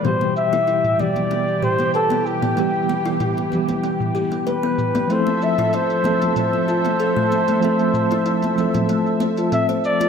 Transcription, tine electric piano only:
X:1
M:4/4
L:1/8
Q:"Swing 16ths" 1/4=95
K:Am
V:1 name="Tine electric piano"
[B,,E,G,G]3 [B,,E,G,G]4- [B,,E,G,G] | [E,G,B,G]3 [E,G,B,G]4- [E,G,B,G] | [F,A,CEA]3 [F,A,CAe]4- [F,A,CAe] | [F,A,CAe]3 [F,A,CAe]4- [F,A,CAe] |]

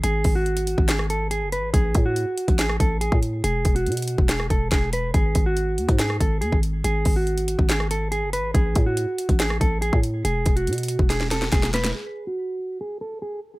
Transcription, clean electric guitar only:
X:1
M:4/4
L:1/16
Q:1/4=141
K:G#phr
V:1 name="Clean electric guitar"
G3 F4- F G2 A2 G2 B2 | G3 F4- F G2 A2 G2 z2 | G3 F4- F G2 A2 G2 B2 | G3 F4- F G2 A2 G2 z2 |
G3 F4- F G2 A2 G2 B2 | G3 F4- F G2 A2 G2 z2 | G3 F4- F G2 A2 G2 B2 | G3 F4- F G2 A2 G2 z2 |]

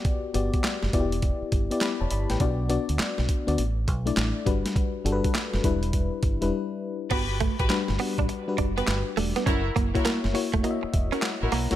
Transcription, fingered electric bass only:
X:1
M:4/4
L:1/16
Q:"Swing 16ths" 1/4=102
K:Glyd
V:1 name="Fingered electric bass" clef=bass
z2 G,,, z2 F,,, E,,,3 z G,,, z2 E,,, G,,, A,,, | B,,,3 D,, z B,,, z D,, A,,,2 B,,,2 A,,, z G,,, z | z2 G,,, z2 F,,, E,,,4 G,,, E,,, z4 | G,,,3 A,,, z G,,, z A,,, z2 F,,,2 G,,, z E,,, z |
F,,,2 F,,, z2 F,,, z E,,, z2 E,,, z2 A,,, B,,, C,, |]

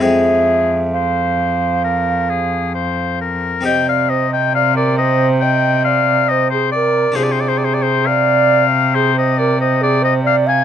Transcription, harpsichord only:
X:1
M:4/4
L:1/8
Q:1/4=68
K:Fm
V:1 name="Harpsichord"
[F,,A,CA]8 | [K:Cm] [C,CEG]8 | [C,DFA]8 |]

